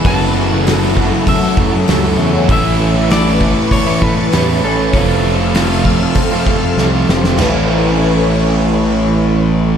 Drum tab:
CC |----------------|----------------|----------------|x---------------|
HH |o---o---o---o---|o---o---o---o---|o---o---o-------|----------------|
SD |----o-------o---|----o-------o---|----o-------o-oo|o---------------|
FT |----------------|----------------|----------------|o---------------|
BD |o-----o-o-o-----|o-----o-o-o-----|o-----o-o-o-----|----------------|